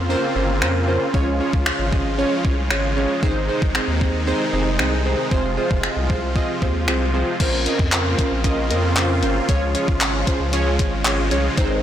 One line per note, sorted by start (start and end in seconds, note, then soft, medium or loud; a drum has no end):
0.00 0.16 F2 medium
0.00 3.19 C#3 medium
0.00 1.12 A#3 medium
0.00 1.12 C4 medium
0.00 1.10 F4 medium
0.09 0.24 C#4 loud
0.09 0.24 F4 loud
0.09 0.24 A#4 loud
0.09 0.25 C5 loud
0.36 0.63 G1 medium
0.36 0.50 C#4 medium
0.36 0.50 F4 medium
0.36 0.51 A#4 medium
0.36 0.51 C5 medium
0.62 0.98 F2 medium
0.62 0.76 C#4 medium
0.62 0.77 F4 medium
0.62 0.77 A#4 medium
0.62 0.77 C5 medium
0.62 finger snap loud
0.88 1.03 C#4 medium
0.88 1.03 F4 medium
0.88 1.03 A#4 medium
0.88 1.03 C5 medium
1.14 1.41 C#2 loud
1.14 3.21 F3 medium
1.14 7.36 G#3 medium
1.14 1.29 C#4 loud
1.14 1.29 F4 loud
1.14 3.21 F4 medium
1.14 1.29 G#4 loud
1.14 1.29 C#5 loud
1.14 kick loud
1.40 1.55 C#4 medium
1.40 1.55 F4 medium
1.40 1.55 G#4 medium
1.40 1.55 C#5 medium
1.53 1.71 C#2 medium
1.53 kick medium
1.66 1.81 C#4 medium
1.66 1.81 F4 medium
1.66 1.81 G#4 medium
1.66 1.81 C#5 medium
1.66 finger snap loud
1.79 2.24 G#1 medium
1.92 2.07 C#4 medium
1.92 2.07 F4 medium
1.92 2.07 G#4 medium
1.92 2.07 D#5 medium
1.92 kick medium
2.18 2.33 C#4 loud
2.18 2.33 F4 medium
2.18 2.33 G#4 medium
2.18 2.33 C#5 loud
2.44 2.72 C2 medium
2.44 2.59 C#4 medium
2.44 2.59 F4 medium
2.44 2.59 G#4 medium
2.44 2.59 C#5 medium
2.44 kick medium
2.70 3.07 G#1 medium
2.70 2.85 C#4 medium
2.70 2.85 F4 medium
2.70 2.85 G#4 medium
2.70 2.85 C#5 medium
2.70 finger snap loud
2.96 3.11 C#4 medium
2.96 3.11 F4 medium
2.96 3.11 G#4 medium
2.96 3.12 C#5 medium
3.22 3.50 G#1 loud
3.22 7.36 C3 medium
3.22 5.29 D#3 medium
3.22 3.37 C4 loud
3.22 3.37 D#4 loud
3.22 5.29 D#4 medium
3.22 3.38 G#4 loud
3.22 3.38 C5 loud
3.22 kick loud
3.49 3.63 C4 medium
3.49 3.64 D#4 medium
3.49 3.64 G#4 medium
3.49 3.64 C5 loud
3.62 3.80 G#1 medium
3.62 kick medium
3.75 3.90 C4 medium
3.75 3.90 D#4 medium
3.75 3.90 G#4 medium
3.75 3.90 C5 loud
3.75 finger snap loud
3.88 4.33 D#2 medium
4.01 4.16 C4 medium
4.01 4.16 D#4 medium
4.01 4.16 G#4 medium
4.01 4.16 C5 medium
4.01 kick medium
4.27 4.42 C4 loud
4.27 4.42 D#4 loud
4.27 4.42 G#4 loud
4.27 4.42 C5 loud
4.53 4.81 F1 medium
4.53 4.68 C4 medium
4.53 4.68 D#4 medium
4.53 4.68 G#4 medium
4.53 4.68 C5 medium
4.79 5.15 C2 medium
4.79 4.94 C4 medium
4.79 4.94 D#4 medium
4.79 4.94 G#4 medium
4.79 4.94 C5 medium
4.79 finger snap loud
5.05 5.20 C4 medium
5.05 5.20 D#4 medium
5.05 5.20 G#4 medium
5.05 5.20 C5 medium
5.31 5.59 F1 loud
5.31 7.38 F3 medium
5.31 5.46 C4 loud
5.31 5.46 F4 loud
5.31 7.38 F4 medium
5.31 5.46 G#4 loud
5.31 5.46 C5 loud
5.31 kick loud
5.57 5.72 C4 medium
5.57 5.72 F4 medium
5.57 5.72 G#4 medium
5.57 5.72 C5 medium
5.71 5.89 F1 medium
5.71 kick medium
5.83 5.98 C4 medium
5.83 5.98 F4 medium
5.83 5.98 G#4 medium
5.83 5.98 D#5 medium
5.83 finger snap loud
5.97 6.42 C2 medium
6.09 6.24 C4 medium
6.09 6.24 F4 medium
6.09 6.24 G#4 medium
6.09 6.25 C5 medium
6.09 kick medium
6.36 6.50 C4 loud
6.36 6.51 F4 loud
6.36 6.51 G#4 loud
6.36 6.51 D#5 loud
6.36 kick medium
6.62 6.89 D#2 medium
6.62 6.76 C4 medium
6.62 6.77 F4 medium
6.62 6.77 G#4 medium
6.62 6.77 C5 medium
6.62 kick medium
6.88 7.24 C2 medium
6.88 7.03 C4 medium
6.88 7.03 F4 medium
6.88 7.03 G#4 medium
6.88 7.03 C5 medium
6.88 finger snap loud
7.14 7.29 C4 medium
7.14 7.29 F4 medium
7.14 7.29 G#4 medium
7.14 7.29 C5 medium
7.40 7.67 A#1 loud
7.40 9.47 C#3 medium
7.40 9.47 A#3 medium
7.40 9.47 C4 medium
7.40 7.55 C#4 loud
7.40 7.55 F4 loud
7.40 11.53 F4 medium
7.40 7.55 A#4 loud
7.40 7.55 C5 loud
7.40 kick loud
7.40 closed hi-hat medium
7.40 crash medium
7.66 7.81 C#4 medium
7.66 7.81 F4 medium
7.66 7.81 A#4 medium
7.66 7.81 D#5 medium
7.66 closed hi-hat medium
7.79 8.15 F2 medium
7.79 kick medium
7.92 8.07 C#4 medium
7.92 8.07 F4 medium
7.92 8.07 A#4 medium
7.92 8.07 C5 loud
7.92 clap loud
7.92 closed hi-hat medium
8.18 8.33 C#4 medium
8.18 8.33 F4 medium
8.18 8.33 A#4 medium
8.18 8.33 C5 medium
8.18 kick medium
8.18 closed hi-hat medium
8.31 8.72 A#1 medium
8.44 8.59 C#4 loud
8.44 8.59 F4 medium
8.44 8.59 A#4 loud
8.44 8.59 D#5 loud
8.44 kick medium
8.44 closed hi-hat medium
8.70 9.24 F2 loud
8.70 8.85 C#4 medium
8.70 8.85 F4 medium
8.70 8.85 A#4 medium
8.70 8.85 D#5 medium
8.70 closed hi-hat medium
8.96 9.11 C#4 medium
8.96 9.11 F4 medium
8.96 9.11 A#4 medium
8.96 9.12 C5 medium
8.96 clap loud
8.96 closed hi-hat loud
9.22 9.41 G1 loud
9.22 9.37 C#4 medium
9.22 9.37 F4 medium
9.22 9.37 A#4 medium
9.22 9.38 C5 medium
9.22 closed hi-hat medium
9.48 9.76 C#2 loud
9.48 11.56 C#3 medium
9.48 11.55 F3 medium
9.48 11.83 G#3 medium
9.48 9.63 C#4 loud
9.48 9.63 F4 loud
9.48 9.64 G#4 loud
9.48 9.64 C#5 loud
9.48 kick loud
9.48 closed hi-hat medium
9.75 9.89 C#4 medium
9.75 9.90 F4 medium
9.75 9.90 G#4 medium
9.75 9.90 C#5 medium
9.75 closed hi-hat medium
9.88 10.24 G#1 medium
9.88 kick medium
10.01 10.16 C#4 medium
10.01 10.16 F4 medium
10.01 10.16 G#4 medium
10.01 10.16 C#5 loud
10.01 clap loud
10.01 closed hi-hat medium
10.27 10.42 C#4 medium
10.27 10.42 F4 medium
10.27 10.42 G#4 medium
10.27 10.42 C5 medium
10.27 kick medium
10.27 closed hi-hat medium
10.40 10.81 C#2 medium
10.53 10.68 C#4 loud
10.53 10.68 F4 medium
10.53 10.68 G#4 loud
10.53 10.68 C#5 loud
10.53 closed hi-hat medium
10.79 11.33 G#1 loud
10.79 10.94 C#4 medium
10.79 10.94 F4 medium
10.79 10.94 G#4 medium
10.79 10.94 C#5 medium
10.79 kick medium
10.79 closed hi-hat medium
11.05 11.20 C#4 medium
11.05 11.20 F4 medium
11.05 11.20 G#4 medium
11.05 11.20 C#5 medium
11.05 clap loud
11.05 closed hi-hat medium
11.31 11.49 C2 loud
11.31 11.46 C#4 medium
11.31 11.46 F4 medium
11.31 11.46 G#4 medium
11.31 11.46 C#5 loud
11.31 closed hi-hat medium
11.57 11.83 G#1 loud
11.57 11.83 C3 medium
11.57 11.83 D#3 medium
11.57 11.72 C4 loud
11.57 11.72 D#4 loud
11.57 11.83 D#4 medium
11.57 11.72 G#4 loud
11.57 11.72 C5 loud
11.57 kick loud
11.57 closed hi-hat medium
11.57 riser medium